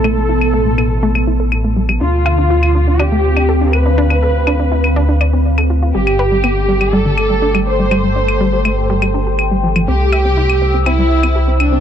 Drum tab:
CL |x--x--x--x--x--x|--x--x--x--x--x-|-x--x--x--x--x--|-x--x--x--x--x--|

CL |x--x--x--x--x--x|--x--x--x--x--x-|